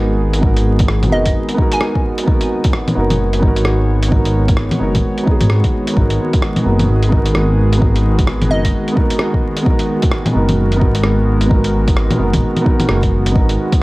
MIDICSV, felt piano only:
0, 0, Header, 1, 2, 480
1, 0, Start_track
1, 0, Key_signature, 5, "minor"
1, 0, Tempo, 461538
1, 449, Time_signature, 4, 2, 24, 8
1, 14380, End_track
2, 0, Start_track
2, 0, Title_t, "Felt piano"
2, 0, Program_c, 0, 0
2, 0, Control_c, 0, 64, 127
2, 0, Note_on_c, 0, 59, 94
2, 0, Note_on_c, 0, 63, 85
2, 0, Note_on_c, 0, 66, 84
2, 0, Note_on_c, 0, 70, 101
2, 383, Note_off_c, 0, 59, 0
2, 399, Note_on_c, 0, 59, 85
2, 410, Note_off_c, 0, 63, 0
2, 425, Note_on_c, 0, 63, 73
2, 431, Note_off_c, 0, 66, 0
2, 444, Note_off_c, 0, 70, 0
2, 451, Note_on_c, 0, 66, 76
2, 481, Note_on_c, 0, 70, 93
2, 1121, Note_off_c, 0, 59, 0
2, 1134, Note_off_c, 0, 63, 0
2, 1138, Note_on_c, 0, 59, 76
2, 1147, Note_off_c, 0, 66, 0
2, 1153, Note_on_c, 0, 63, 69
2, 1162, Note_off_c, 0, 70, 0
2, 1165, Note_on_c, 0, 66, 71
2, 1182, Note_on_c, 0, 70, 86
2, 1589, Note_off_c, 0, 59, 0
2, 1605, Note_on_c, 0, 59, 91
2, 1620, Note_off_c, 0, 63, 0
2, 1628, Note_off_c, 0, 66, 0
2, 1635, Note_on_c, 0, 63, 86
2, 1637, Note_off_c, 0, 70, 0
2, 1657, Note_on_c, 0, 66, 85
2, 1686, Note_on_c, 0, 70, 101
2, 2308, Note_off_c, 0, 59, 0
2, 2323, Note_on_c, 0, 59, 83
2, 2336, Note_off_c, 0, 63, 0
2, 2351, Note_off_c, 0, 66, 0
2, 2351, Note_on_c, 0, 63, 76
2, 2365, Note_off_c, 0, 70, 0
2, 2379, Note_on_c, 0, 66, 78
2, 2407, Note_on_c, 0, 70, 94
2, 3043, Note_off_c, 0, 59, 0
2, 3058, Note_off_c, 0, 63, 0
2, 3065, Note_on_c, 0, 59, 77
2, 3071, Note_off_c, 0, 66, 0
2, 3081, Note_on_c, 0, 63, 69
2, 3085, Note_off_c, 0, 70, 0
2, 3098, Note_on_c, 0, 66, 70
2, 3109, Note_on_c, 0, 70, 88
2, 3514, Note_off_c, 0, 59, 0
2, 3530, Note_on_c, 0, 59, 94
2, 3540, Note_off_c, 0, 63, 0
2, 3555, Note_off_c, 0, 66, 0
2, 3555, Note_on_c, 0, 63, 84
2, 3560, Note_off_c, 0, 70, 0
2, 3585, Note_on_c, 0, 66, 88
2, 3614, Note_on_c, 0, 70, 102
2, 4230, Note_off_c, 0, 59, 0
2, 4245, Note_on_c, 0, 59, 82
2, 4256, Note_off_c, 0, 63, 0
2, 4271, Note_on_c, 0, 63, 75
2, 4274, Note_off_c, 0, 66, 0
2, 4289, Note_off_c, 0, 70, 0
2, 4301, Note_on_c, 0, 66, 76
2, 4327, Note_on_c, 0, 70, 90
2, 4965, Note_off_c, 0, 59, 0
2, 4977, Note_off_c, 0, 63, 0
2, 4981, Note_on_c, 0, 59, 76
2, 4990, Note_off_c, 0, 66, 0
2, 4992, Note_on_c, 0, 63, 70
2, 5004, Note_off_c, 0, 70, 0
2, 5006, Note_on_c, 0, 66, 70
2, 5020, Note_on_c, 0, 70, 87
2, 5426, Note_off_c, 0, 59, 0
2, 5442, Note_on_c, 0, 59, 88
2, 5453, Note_off_c, 0, 63, 0
2, 5469, Note_off_c, 0, 66, 0
2, 5469, Note_on_c, 0, 63, 82
2, 5476, Note_off_c, 0, 70, 0
2, 5495, Note_on_c, 0, 66, 78
2, 5526, Note_on_c, 0, 68, 93
2, 6156, Note_off_c, 0, 59, 0
2, 6172, Note_on_c, 0, 59, 85
2, 6176, Note_off_c, 0, 63, 0
2, 6189, Note_off_c, 0, 66, 0
2, 6201, Note_on_c, 0, 63, 75
2, 6205, Note_off_c, 0, 68, 0
2, 6226, Note_on_c, 0, 66, 74
2, 6254, Note_on_c, 0, 70, 92
2, 6888, Note_off_c, 0, 59, 0
2, 6900, Note_off_c, 0, 63, 0
2, 6904, Note_on_c, 0, 59, 76
2, 6915, Note_off_c, 0, 66, 0
2, 6916, Note_on_c, 0, 63, 70
2, 6929, Note_off_c, 0, 70, 0
2, 6931, Note_on_c, 0, 66, 69
2, 6945, Note_on_c, 0, 70, 82
2, 7356, Note_off_c, 0, 59, 0
2, 7371, Note_on_c, 0, 59, 93
2, 7381, Note_off_c, 0, 63, 0
2, 7391, Note_off_c, 0, 66, 0
2, 7396, Note_on_c, 0, 63, 85
2, 7398, Note_off_c, 0, 70, 0
2, 7427, Note_on_c, 0, 66, 83
2, 7456, Note_on_c, 0, 70, 99
2, 8071, Note_off_c, 0, 59, 0
2, 8087, Note_on_c, 0, 59, 81
2, 8096, Note_off_c, 0, 63, 0
2, 8112, Note_on_c, 0, 63, 77
2, 8116, Note_off_c, 0, 66, 0
2, 8130, Note_off_c, 0, 70, 0
2, 8144, Note_on_c, 0, 66, 75
2, 8170, Note_on_c, 0, 70, 88
2, 8805, Note_off_c, 0, 59, 0
2, 8818, Note_off_c, 0, 63, 0
2, 8827, Note_on_c, 0, 59, 75
2, 8834, Note_off_c, 0, 66, 0
2, 8845, Note_on_c, 0, 63, 69
2, 8847, Note_off_c, 0, 70, 0
2, 8855, Note_on_c, 0, 66, 71
2, 8873, Note_on_c, 0, 70, 84
2, 9265, Note_off_c, 0, 59, 0
2, 9281, Note_on_c, 0, 59, 93
2, 9296, Note_off_c, 0, 63, 0
2, 9311, Note_on_c, 0, 63, 86
2, 9313, Note_off_c, 0, 66, 0
2, 9322, Note_off_c, 0, 70, 0
2, 9335, Note_on_c, 0, 66, 83
2, 9365, Note_on_c, 0, 70, 105
2, 9989, Note_off_c, 0, 59, 0
2, 10004, Note_on_c, 0, 59, 81
2, 10012, Note_off_c, 0, 63, 0
2, 10027, Note_on_c, 0, 63, 77
2, 10029, Note_off_c, 0, 66, 0
2, 10044, Note_off_c, 0, 70, 0
2, 10058, Note_on_c, 0, 66, 75
2, 10086, Note_on_c, 0, 70, 94
2, 10724, Note_off_c, 0, 59, 0
2, 10736, Note_off_c, 0, 63, 0
2, 10745, Note_on_c, 0, 59, 78
2, 10751, Note_off_c, 0, 66, 0
2, 10756, Note_on_c, 0, 63, 71
2, 10765, Note_off_c, 0, 70, 0
2, 10771, Note_on_c, 0, 66, 72
2, 10786, Note_on_c, 0, 70, 87
2, 11179, Note_off_c, 0, 59, 0
2, 11195, Note_on_c, 0, 59, 94
2, 11208, Note_off_c, 0, 63, 0
2, 11223, Note_on_c, 0, 63, 88
2, 11231, Note_off_c, 0, 66, 0
2, 11238, Note_off_c, 0, 70, 0
2, 11252, Note_on_c, 0, 66, 85
2, 11279, Note_on_c, 0, 70, 100
2, 11904, Note_off_c, 0, 59, 0
2, 11920, Note_on_c, 0, 59, 83
2, 11933, Note_off_c, 0, 63, 0
2, 11948, Note_off_c, 0, 66, 0
2, 11951, Note_on_c, 0, 63, 77
2, 11961, Note_off_c, 0, 70, 0
2, 11978, Note_on_c, 0, 66, 74
2, 12005, Note_on_c, 0, 70, 92
2, 12642, Note_off_c, 0, 59, 0
2, 12657, Note_off_c, 0, 63, 0
2, 12661, Note_on_c, 0, 59, 78
2, 12671, Note_off_c, 0, 66, 0
2, 12675, Note_on_c, 0, 63, 71
2, 12685, Note_off_c, 0, 70, 0
2, 12694, Note_on_c, 0, 66, 73
2, 12703, Note_on_c, 0, 70, 85
2, 13106, Note_off_c, 0, 59, 0
2, 13121, Note_on_c, 0, 59, 93
2, 13134, Note_off_c, 0, 63, 0
2, 13149, Note_on_c, 0, 63, 88
2, 13152, Note_off_c, 0, 66, 0
2, 13157, Note_off_c, 0, 70, 0
2, 13177, Note_on_c, 0, 66, 82
2, 13206, Note_on_c, 0, 70, 101
2, 13830, Note_off_c, 0, 59, 0
2, 13845, Note_on_c, 0, 59, 82
2, 13857, Note_off_c, 0, 63, 0
2, 13870, Note_off_c, 0, 66, 0
2, 13872, Note_on_c, 0, 63, 77
2, 13885, Note_off_c, 0, 70, 0
2, 13901, Note_on_c, 0, 66, 79
2, 13928, Note_on_c, 0, 70, 92
2, 14380, Note_off_c, 0, 59, 0
2, 14380, Note_off_c, 0, 63, 0
2, 14380, Note_off_c, 0, 66, 0
2, 14380, Note_off_c, 0, 70, 0
2, 14380, End_track
0, 0, End_of_file